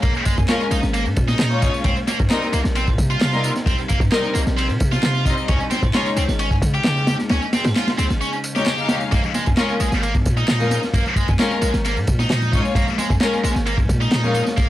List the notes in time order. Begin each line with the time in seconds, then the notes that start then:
Already playing: G#3 A#3 C#4
0.03 A#1 A#3, kick, ride, tambourine
0.15 tambourine
0.25 G#3, kick, ride, tambourine
0.37 F2, kick, tambourine
0.48 G#3 C#4 F4 A#4, snare, clap, ride, tambourine
0.60 tambourine
0.71 A#1 D#4, ride, tambourine
0.83 G#1, snare, tambourine
0.94 A#3, ride, tambourine
1.06 G#2, tambourine
1.16 A#2, kick, ride, tambourine
1.28 D#4, snare, tambourine
1.39 A#2, snare, clap, ride, tambourine
1.51 G#3 C#4 F4 C#5, tambourine
1.62 D#4, kick, ride, tambourine
1.74 tambourine
1.84 C2 C3 G3 C4 D#4, kick, ride, tambourine
1.97 tambourine
2.08 A#3, snare, ride, tambourine
2.19 G2, kick, tambourine
2.30 G3 C4 D#4 A#4, snare, clap, ride, tambourine
2.42 tambourine
2.53 C2 A#3, ride, tambourine
2.64 A#1, snare, tambourine
2.75 C4, ride, tambourine
2.87 A#2, kick, tambourine
2.98 C3, kick, ride, tambourine
3.10 F4, tambourine
3.21 C3, snare, clap, ride, tambourine
3.33 G3 C4 D#4 A#4, snare, tambourine
3.44 F4, ride, tambourine
3.56 snare, tambourine
3.66 C2 C4, kick, ride, tambourine
3.78 tambourine
3.89 A#3, kick, ride, tambourine
4.00 G2, kick, tambourine
4.12 G3 C4 D#4 A#4, snare, clap, ride, tambourine
4.24 tambourine
4.35 C2 A#3, ride, tambourine
4.47 A#1, snare, tambourine
4.57 C4, ride, tambourine
4.69 A#2, tambourine
4.80 C3, kick, ride, tambourine
4.92 F4, snare, tambourine
5.03 C3, snare, clap, ride, tambourine
5.15 tambourine
5.26 G3 C4 D#4 F4 D#5, kick, ride, tambourine
5.38 tambourine
5.48 C#2 C#3 G#3 C#4, kick, ride, tambourine
5.60 tambourine
5.71 C4, snare, ride, tambourine
5.83 G#2, kick, tambourine
5.94 G#3 C#4 D#4 F4 C#5, snare, clap, ride, tambourine
6.06 tambourine
6.17 C#2 C4, ride, tambourine
6.28 G#1, snare, tambourine
6.39 C#4, ride, tambourine
6.51 G#2, kick, tambourine
6.62 C#3, kick, ride, tambourine
6.74 G4, tambourine
6.84 C#3, snare, clap, ride, tambourine
6.96 snare, tambourine
7.07 G4, snare, ride, tambourine
7.19 snare, tambourine
7.29 C#2 C#4, snare, ride, tambourine
7.42 tambourine
7.53 C4, snare, ride, tambourine
7.64 G#2, snare, ride, tambourine
7.76 F4, snare, clap, ride, tambourine
7.87 snare, ride, tambourine
7.98 C#2 C4, ride, tambourine
8.10 G#1, snare, tambourine
8.21 C#4, tambourine
8.33 tambourine
8.44 ride, tambourine
8.55 G#3 C#4 D#4 G4 C#5, snare, tambourine
8.66 snare, clap, ride, tambourine
8.78 G#3 C#4 D#4 F5, tambourine
8.89 G4, snare, ride, tambourine
9.01 tambourine
9.12 A#1 G#3 A#3, kick, ride, tambourine
9.24 tambourine, muted conga, low conga
9.34 G#3, snare, ride, tambourine, high conga
9.46 F2, kick, tambourine
9.57 G#3 C#4 F4 A#4, snare, clap, ride, tambourine, muted conga
9.69 tambourine, high conga
9.80 A#1 G#3, ride, tambourine, muted conga
9.92 G#1, snare, tambourine
10.03 A#3, ride, tambourine
10.14 G#2, kick, tambourine, muted conga, high conga, low conga
10.25 A#2, kick, ride, tambourine
10.37 D#4, tambourine, muted conga
10.48 A#2, snare, clap, ride, tambourine
10.60 G#3 C#4 F4 A#4, snare, tambourine, low conga
10.71 D#4, ride, tambourine, muted conga, high conga
10.83 snare, tambourine
10.94 A#1 A#3, kick, ride, tambourine, muted conga
11.06 tambourine, low conga
11.16 G#3, kick, ride, tambourine
11.28 F2, kick, tambourine, muted conga
11.39 G#3 C#4 F4 A#4, snare, clap, ride, tambourine
11.51 tambourine, muted conga, high conga
11.62 A#1 G#3, ride, tambourine
11.74 G#1, snare, tambourine
11.85 A#3, ride, tambourine, muted conga
11.96 G#2, tambourine, low conga
12.07 A#2, kick, ride, tambourine, muted conga
12.19 D#4, snare, tambourine
12.30 A#2, snare, clap, ride, tambourine
12.42 tambourine, muted conga, low conga
12.53 G#3 C#4 D#4 F4 C#5, kick, ride, tambourine
12.65 tambourine, muted conga
12.75 A#1 A#3, kick, ride, tambourine
12.88 tambourine, low conga
12.98 G#3, snare, ride, tambourine, muted conga, high conga
13.10 F2, kick, tambourine
13.20 G#3 C#4 F4 A#4, snare, clap, ride, tambourine, muted conga
13.33 tambourine, high conga
13.44 A#1 G#3, ride, tambourine
13.55 G#1, snare, tambourine, muted conga
13.66 A#3, ride, tambourine
13.78 G#2, kick, tambourine, muted conga, high conga, low conga
13.89 A#2, kick, ride, tambourine
14.01 D#4, tambourine
14.12 A#2, snare, clap, ride, tambourine, muted conga
14.24 G#3 C#4 F4 A#4, snare, tambourine, low conga
14.34 D#4, ride, tambourine, muted conga, high conga
14.46 snare, tambourine
14.57 A#1 A#3, kick, ride, tambourine